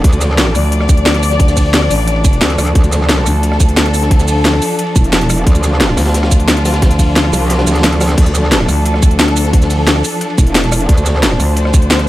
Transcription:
Already playing: string section F3 D4
0.04 wobble bass D2, string section D5, kick, closed hi-hat, ride
0.13 closed hi-hat, shaker
0.21 snare, closed hi-hat, ride, shaker
0.29 snare
0.38 snare, closed hi-hat, ride
0.47 cross-stick, snare
0.55 fm bass D2, cross-stick, open hi-hat, ride, shaker
0.72 closed hi-hat, ride
0.80 cross-stick, snare
0.89 kick, closed hi-hat, ride, shaker
0.97 closed hi-hat, ride
1.06 snare, closed hi-hat, ride, shaker
1.14 cross-stick, closed hi-hat
1.23 open hi-hat, ride, shaker
1.31 snare, closed hi-hat
1.39 kick, closed hi-hat, ride
1.48 snare, closed hi-hat, shaker
1.57 kick, closed hi-hat, open hi-hat, shaker
1.74 snare, closed hi-hat, ride
1.82 cross-stick
1.91 fm bass A1, open hi-hat, ride, shaker
2.07 closed hi-hat, ride
2.16 ride
2.24 kick, closed hi-hat, ride, shaker
2.33 closed hi-hat
2.41 wobble bass D2, snare, closed hi-hat, ride, shaker
2.50 closed hi-hat
2.58 wobble bass D2, cross-stick, open hi-hat, ride, shaker
2.67 closed hi-hat, ride
2.75 wobble bass D2, string section A4, kick, closed hi-hat, ride
2.84 closed hi-hat, shaker
2.92 snare, closed hi-hat, ride, shaker
3.01 snare
3.09 snare, closed hi-hat, ride
3.18 cross-stick, snare
3.26 fm bass D2, cross-stick, open hi-hat, ride, shaker
3.43 closed hi-hat, ride
3.52 cross-stick, snare
3.60 kick, closed hi-hat, ride, shaker
3.69 closed hi-hat, ride
3.77 snare, closed hi-hat, ride, shaker
3.86 cross-stick, closed hi-hat
3.94 open hi-hat, ride, shaker
4.02 snare, closed hi-hat
4.11 kick, closed hi-hat, ride
4.19 snare, closed hi-hat, shaker
4.28 closed hi-hat, open hi-hat, shaker
4.45 snare, closed hi-hat, ride
4.53 cross-stick
4.62 open hi-hat, ride, shaker
4.79 closed hi-hat, ride
4.87 ride
4.96 wobble bass E1, kick, closed hi-hat, ride, shaker
5.04 closed hi-hat
5.12 snare, closed hi-hat, ride, shaker
5.21 closed hi-hat
5.30 cross-stick, open hi-hat, ride, shaker
5.38 closed hi-hat, ride
5.47 wobble bass D2, string section F4, kick, closed hi-hat, ride
5.55 closed hi-hat, shaker
5.64 snare, closed hi-hat, ride, shaker
5.72 snare
5.81 snare, closed hi-hat, ride
5.89 cross-stick, snare
5.97 fm bass D2, cross-stick, snare, open hi-hat, ride, shaker
6.05 snare, ride
6.14 snare, closed hi-hat, ride
6.23 cross-stick, snare, ride
6.31 kick, closed hi-hat, ride, shaker
6.39 closed hi-hat, ride
6.48 snare, closed hi-hat, ride, shaker
6.57 cross-stick, closed hi-hat
6.65 snare, open hi-hat, ride, shaker
6.73 snare, closed hi-hat, ride
6.82 kick, snare, closed hi-hat, ride
6.90 snare, closed hi-hat, shaker
6.99 kick, closed hi-hat, open hi-hat, shaker
7.16 snare, closed hi-hat, ride
7.25 cross-stick
7.33 wobble bass C2, cross-stick, open hi-hat, ride, shaker
7.50 snare, closed hi-hat, ride
7.58 snare, ride
7.67 wobble bass D2, snare, closed hi-hat, ride, shaker
7.71 snare, ride
7.75 snare, closed hi-hat, ride
7.79 snare, ride
7.83 snare, closed hi-hat, ride, shaker
7.92 snare, closed hi-hat
8.01 cross-stick, snare, open hi-hat, ride, shaker
8.09 snare, closed hi-hat, ride
8.17 wobble bass D2, string section A4, kick, closed hi-hat, crash, ride
8.26 closed hi-hat, shaker
8.34 snare, closed hi-hat, ride, shaker
8.43 snare
8.52 snare, closed hi-hat, ride
8.60 cross-stick, snare
8.68 fm bass D2, cross-stick, open hi-hat, ride, shaker
8.86 closed hi-hat, ride
8.94 cross-stick, snare
9.02 kick, closed hi-hat, ride, shaker
9.11 closed hi-hat, ride
9.19 snare, closed hi-hat, ride, shaker
9.28 cross-stick, closed hi-hat
9.36 open hi-hat, ride, shaker
9.45 snare, closed hi-hat
9.53 kick, closed hi-hat, ride
9.62 snare, closed hi-hat, shaker
9.70 closed hi-hat, open hi-hat, shaker
9.87 snare, closed hi-hat, ride
9.96 cross-stick
10.04 open hi-hat, ride, shaker
10.21 closed hi-hat, ride
10.30 ride
10.38 wobble bass E1, kick, closed hi-hat, ride, shaker
10.47 closed hi-hat
10.55 snare, closed hi-hat, ride, shaker
10.64 closed hi-hat
10.72 cross-stick, open hi-hat, ride, shaker
10.81 closed hi-hat, ride
10.89 wobble bass D2, string section C5, kick, closed hi-hat, ride
10.97 closed hi-hat, shaker
11.06 snare, closed hi-hat, ride, shaker
11.15 snare
11.22 snare, closed hi-hat, ride
11.31 cross-stick, snare
11.40 fm bass D2, cross-stick, open hi-hat, ride, shaker
11.56 closed hi-hat, ride
11.65 cross-stick, snare
11.74 kick, closed hi-hat, ride, shaker
11.82 closed hi-hat, ride
11.90 snare, closed hi-hat, ride, shaker
11.99 cross-stick, closed hi-hat

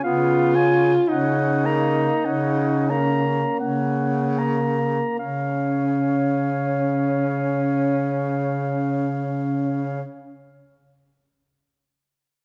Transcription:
0.03 baritone saxophone C#3, tenor saxophone B3, alto saxophone F4, clarinet F5
0.55 tenor saxophone C#4, clarinet G#5
1.08 baritone saxophone C#3, tenor saxophone C#4, alto saxophone D#4, clarinet F#5
1.66 tenor saxophone A#3, clarinet A#5
2.25 baritone saxophone C#3, tenor saxophone C#4, clarinet F#5
2.90 tenor saxophone A#3, alto saxophone C#4, clarinet A#5
3.60 baritone saxophone C#3, alto saxophone A#3, tenor saxophone C#4, clarinet F#5
4.38 tenor saxophone A#3, clarinet A#5
5.19 baritone saxophone C#3, tenor saxophone C#4, alto saxophone C#4, clarinet F5

